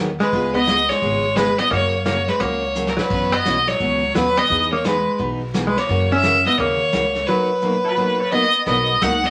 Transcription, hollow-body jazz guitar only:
0, 0, Header, 1, 2, 480
1, 0, Start_track
1, 0, Key_signature, 5, "major"
1, 0, Tempo, 347625
1, 447, Time_signature, 4, 2, 24, 8
1, 12841, End_track
2, 0, Start_track
2, 0, Title_t, "Hollow-body jazz guitar"
2, 0, Program_c, 0, 26
2, 278, Note_on_c, 0, 56, 80
2, 721, Note_off_c, 0, 56, 0
2, 758, Note_on_c, 0, 59, 88
2, 1229, Note_off_c, 0, 59, 0
2, 1229, Note_on_c, 0, 56, 80
2, 1869, Note_off_c, 0, 56, 0
2, 1886, Note_on_c, 0, 56, 70
2, 2186, Note_off_c, 0, 56, 0
2, 2186, Note_on_c, 0, 59, 81
2, 2355, Note_off_c, 0, 59, 0
2, 2360, Note_on_c, 0, 58, 76
2, 2810, Note_off_c, 0, 58, 0
2, 2839, Note_on_c, 0, 58, 70
2, 3146, Note_off_c, 0, 58, 0
2, 3146, Note_on_c, 0, 56, 64
2, 3313, Note_off_c, 0, 56, 0
2, 3313, Note_on_c, 0, 58, 78
2, 3986, Note_off_c, 0, 58, 0
2, 3986, Note_on_c, 0, 54, 53
2, 4081, Note_off_c, 0, 54, 0
2, 4097, Note_on_c, 0, 54, 67
2, 4586, Note_off_c, 0, 54, 0
2, 4586, Note_on_c, 0, 59, 79
2, 5071, Note_off_c, 0, 59, 0
2, 5071, Note_on_c, 0, 54, 76
2, 5717, Note_off_c, 0, 54, 0
2, 5733, Note_on_c, 0, 54, 61
2, 6036, Note_off_c, 0, 54, 0
2, 6036, Note_on_c, 0, 59, 80
2, 6514, Note_off_c, 0, 59, 0
2, 6524, Note_on_c, 0, 58, 71
2, 6693, Note_off_c, 0, 58, 0
2, 6693, Note_on_c, 0, 56, 54
2, 7170, Note_off_c, 0, 56, 0
2, 7830, Note_on_c, 0, 56, 59
2, 7977, Note_off_c, 0, 56, 0
2, 7977, Note_on_c, 0, 58, 75
2, 8444, Note_off_c, 0, 58, 0
2, 8454, Note_on_c, 0, 61, 92
2, 8890, Note_off_c, 0, 61, 0
2, 8930, Note_on_c, 0, 59, 71
2, 9085, Note_off_c, 0, 59, 0
2, 9111, Note_on_c, 0, 58, 79
2, 10004, Note_off_c, 0, 58, 0
2, 10060, Note_on_c, 0, 54, 64
2, 11494, Note_off_c, 0, 54, 0
2, 11498, Note_on_c, 0, 59, 71
2, 11939, Note_off_c, 0, 59, 0
2, 11977, Note_on_c, 0, 59, 74
2, 12451, Note_off_c, 0, 59, 0
2, 12451, Note_on_c, 0, 63, 72
2, 12751, Note_off_c, 0, 63, 0
2, 12751, Note_on_c, 0, 59, 65
2, 12841, Note_off_c, 0, 59, 0
2, 12841, End_track
0, 0, End_of_file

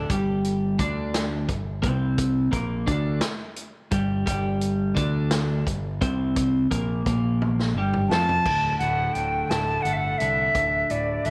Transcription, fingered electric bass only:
0, 0, Header, 1, 2, 480
1, 0, Start_track
1, 0, Tempo, 696864
1, 68, Time_signature, 6, 3, 24, 8
1, 7785, End_track
2, 0, Start_track
2, 0, Title_t, "Fingered electric bass"
2, 0, Program_c, 0, 33
2, 68, Note_on_c, 0, 31, 88
2, 518, Note_off_c, 0, 31, 0
2, 547, Note_on_c, 0, 38, 100
2, 997, Note_off_c, 0, 38, 0
2, 1025, Note_on_c, 0, 31, 74
2, 1247, Note_off_c, 0, 31, 0
2, 1264, Note_on_c, 0, 36, 82
2, 1714, Note_off_c, 0, 36, 0
2, 1740, Note_on_c, 0, 34, 87
2, 1963, Note_off_c, 0, 34, 0
2, 1981, Note_on_c, 0, 38, 98
2, 2203, Note_off_c, 0, 38, 0
2, 2698, Note_on_c, 0, 31, 89
2, 2921, Note_off_c, 0, 31, 0
2, 2942, Note_on_c, 0, 31, 96
2, 3392, Note_off_c, 0, 31, 0
2, 3425, Note_on_c, 0, 38, 100
2, 3873, Note_off_c, 0, 38, 0
2, 3904, Note_on_c, 0, 31, 76
2, 4124, Note_off_c, 0, 31, 0
2, 4143, Note_on_c, 0, 36, 95
2, 4593, Note_off_c, 0, 36, 0
2, 4627, Note_on_c, 0, 34, 88
2, 4846, Note_off_c, 0, 34, 0
2, 4868, Note_on_c, 0, 34, 93
2, 5316, Note_off_c, 0, 34, 0
2, 5333, Note_on_c, 0, 31, 91
2, 5559, Note_off_c, 0, 31, 0
2, 5575, Note_on_c, 0, 41, 88
2, 5801, Note_off_c, 0, 41, 0
2, 5826, Note_on_c, 0, 26, 73
2, 6014, Note_off_c, 0, 26, 0
2, 6065, Note_on_c, 0, 26, 77
2, 6254, Note_off_c, 0, 26, 0
2, 6307, Note_on_c, 0, 26, 84
2, 6495, Note_off_c, 0, 26, 0
2, 6543, Note_on_c, 0, 26, 85
2, 6733, Note_off_c, 0, 26, 0
2, 6783, Note_on_c, 0, 31, 83
2, 6974, Note_off_c, 0, 31, 0
2, 7029, Note_on_c, 0, 36, 78
2, 7218, Note_off_c, 0, 36, 0
2, 7267, Note_on_c, 0, 26, 81
2, 7458, Note_off_c, 0, 26, 0
2, 7512, Note_on_c, 0, 26, 75
2, 7701, Note_off_c, 0, 26, 0
2, 7753, Note_on_c, 0, 26, 93
2, 7785, Note_off_c, 0, 26, 0
2, 7785, End_track
0, 0, End_of_file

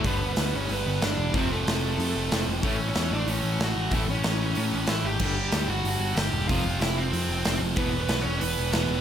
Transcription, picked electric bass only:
0, 0, Header, 1, 2, 480
1, 0, Start_track
1, 0, Tempo, 322061
1, 76, Time_signature, 4, 2, 24, 8
1, 13427, End_track
2, 0, Start_track
2, 0, Title_t, "Picked electric bass"
2, 0, Program_c, 0, 34
2, 64, Note_on_c, 0, 31, 82
2, 505, Note_off_c, 0, 31, 0
2, 552, Note_on_c, 0, 38, 84
2, 772, Note_off_c, 0, 38, 0
2, 793, Note_on_c, 0, 31, 78
2, 1014, Note_off_c, 0, 31, 0
2, 1036, Note_on_c, 0, 31, 93
2, 1256, Note_off_c, 0, 31, 0
2, 1285, Note_on_c, 0, 31, 82
2, 1501, Note_off_c, 0, 31, 0
2, 1512, Note_on_c, 0, 31, 83
2, 1734, Note_off_c, 0, 31, 0
2, 1751, Note_on_c, 0, 28, 88
2, 1974, Note_off_c, 0, 28, 0
2, 1991, Note_on_c, 0, 29, 80
2, 2214, Note_off_c, 0, 29, 0
2, 2234, Note_on_c, 0, 29, 74
2, 2457, Note_off_c, 0, 29, 0
2, 2480, Note_on_c, 0, 29, 88
2, 2917, Note_off_c, 0, 29, 0
2, 2958, Note_on_c, 0, 41, 89
2, 3179, Note_off_c, 0, 41, 0
2, 3208, Note_on_c, 0, 29, 82
2, 3425, Note_off_c, 0, 29, 0
2, 3454, Note_on_c, 0, 29, 86
2, 3668, Note_off_c, 0, 29, 0
2, 3684, Note_on_c, 0, 29, 87
2, 3903, Note_off_c, 0, 29, 0
2, 3914, Note_on_c, 0, 33, 87
2, 4355, Note_off_c, 0, 33, 0
2, 4407, Note_on_c, 0, 40, 87
2, 4625, Note_off_c, 0, 40, 0
2, 4646, Note_on_c, 0, 33, 82
2, 4854, Note_off_c, 0, 33, 0
2, 4863, Note_on_c, 0, 33, 87
2, 5092, Note_off_c, 0, 33, 0
2, 5116, Note_on_c, 0, 33, 85
2, 5339, Note_off_c, 0, 33, 0
2, 5356, Note_on_c, 0, 33, 88
2, 5579, Note_off_c, 0, 33, 0
2, 5606, Note_on_c, 0, 33, 86
2, 5824, Note_off_c, 0, 33, 0
2, 5832, Note_on_c, 0, 33, 83
2, 6057, Note_off_c, 0, 33, 0
2, 6080, Note_on_c, 0, 33, 83
2, 6301, Note_off_c, 0, 33, 0
2, 6328, Note_on_c, 0, 33, 93
2, 6762, Note_off_c, 0, 33, 0
2, 6811, Note_on_c, 0, 45, 83
2, 7027, Note_off_c, 0, 45, 0
2, 7049, Note_on_c, 0, 33, 82
2, 7266, Note_off_c, 0, 33, 0
2, 7274, Note_on_c, 0, 33, 84
2, 7497, Note_off_c, 0, 33, 0
2, 7521, Note_on_c, 0, 32, 85
2, 7736, Note_off_c, 0, 32, 0
2, 7745, Note_on_c, 0, 31, 92
2, 8188, Note_off_c, 0, 31, 0
2, 8233, Note_on_c, 0, 38, 82
2, 8453, Note_off_c, 0, 38, 0
2, 8461, Note_on_c, 0, 31, 80
2, 8690, Note_off_c, 0, 31, 0
2, 8710, Note_on_c, 0, 31, 83
2, 8924, Note_off_c, 0, 31, 0
2, 8933, Note_on_c, 0, 31, 85
2, 9165, Note_off_c, 0, 31, 0
2, 9171, Note_on_c, 0, 31, 88
2, 9404, Note_off_c, 0, 31, 0
2, 9418, Note_on_c, 0, 28, 92
2, 9648, Note_off_c, 0, 28, 0
2, 9677, Note_on_c, 0, 29, 91
2, 9897, Note_off_c, 0, 29, 0
2, 9911, Note_on_c, 0, 29, 86
2, 10134, Note_off_c, 0, 29, 0
2, 10150, Note_on_c, 0, 29, 92
2, 10590, Note_off_c, 0, 29, 0
2, 10628, Note_on_c, 0, 41, 82
2, 10852, Note_off_c, 0, 41, 0
2, 10870, Note_on_c, 0, 29, 89
2, 11093, Note_off_c, 0, 29, 0
2, 11110, Note_on_c, 0, 29, 98
2, 11329, Note_off_c, 0, 29, 0
2, 11338, Note_on_c, 0, 29, 92
2, 11566, Note_off_c, 0, 29, 0
2, 11577, Note_on_c, 0, 28, 84
2, 12021, Note_off_c, 0, 28, 0
2, 12071, Note_on_c, 0, 35, 90
2, 12288, Note_off_c, 0, 35, 0
2, 12297, Note_on_c, 0, 28, 80
2, 12524, Note_off_c, 0, 28, 0
2, 12541, Note_on_c, 0, 28, 98
2, 12766, Note_off_c, 0, 28, 0
2, 12789, Note_on_c, 0, 28, 87
2, 13010, Note_off_c, 0, 28, 0
2, 13030, Note_on_c, 0, 28, 89
2, 13245, Note_off_c, 0, 28, 0
2, 13254, Note_on_c, 0, 28, 86
2, 13427, Note_off_c, 0, 28, 0
2, 13427, End_track
0, 0, End_of_file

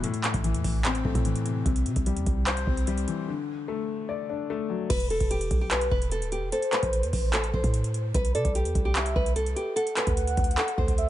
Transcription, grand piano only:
0, 0, Header, 1, 2, 480
1, 0, Start_track
1, 0, Key_signature, 1, "minor"
1, 0, Tempo, 405405
1, 43, Time_signature, 4, 2, 24, 8
1, 13133, End_track
2, 0, Start_track
2, 0, Title_t, "Grand piano"
2, 0, Program_c, 0, 0
2, 0, Control_c, 0, 64, 127
2, 45, Note_on_c, 0, 45, 99
2, 57, Control_c, 0, 64, 0
2, 234, Control_c, 0, 64, 127
2, 520, Note_on_c, 0, 52, 91
2, 1002, Note_on_c, 0, 60, 112
2, 1243, Note_on_c, 0, 57, 89
2, 1244, Note_off_c, 0, 45, 0
2, 1467, Note_off_c, 0, 52, 0
2, 1485, Note_on_c, 0, 52, 86
2, 1725, Note_on_c, 0, 48, 81
2, 1943, Note_off_c, 0, 48, 0
2, 1960, Note_on_c, 0, 48, 95
2, 1962, Note_off_c, 0, 60, 0
2, 1963, Note_off_c, 0, 57, 0
2, 1964, Note_off_c, 0, 52, 0
2, 1979, Control_c, 0, 64, 0
2, 2214, Control_c, 0, 64, 127
2, 2445, Note_on_c, 0, 55, 86
2, 2924, Note_on_c, 0, 72, 110
2, 3162, Note_off_c, 0, 48, 0
2, 3162, Note_on_c, 0, 60, 81
2, 3386, Note_off_c, 0, 55, 0
2, 3404, Note_on_c, 0, 55, 92
2, 3644, Note_on_c, 0, 52, 82
2, 3883, Note_off_c, 0, 60, 0
2, 3884, Note_off_c, 0, 52, 0
2, 3884, Note_off_c, 0, 55, 0
2, 3884, Note_off_c, 0, 72, 0
2, 3884, Note_on_c, 0, 50, 93
2, 3896, Control_c, 0, 64, 0
2, 4134, Control_c, 0, 64, 127
2, 4359, Note_on_c, 0, 57, 93
2, 4840, Note_on_c, 0, 74, 94
2, 5083, Note_off_c, 0, 50, 0
2, 5085, Note_on_c, 0, 62, 84
2, 5311, Note_off_c, 0, 57, 0
2, 5329, Note_on_c, 0, 57, 97
2, 5561, Note_on_c, 0, 54, 80
2, 5801, Note_off_c, 0, 74, 0
2, 5802, Note_off_c, 0, 54, 0
2, 5804, Note_off_c, 0, 62, 0
2, 5806, Note_off_c, 0, 57, 0
2, 5818, Control_c, 0, 64, 0
2, 6008, Control_c, 0, 64, 127
2, 7738, Control_c, 0, 64, 0
2, 13133, End_track
0, 0, End_of_file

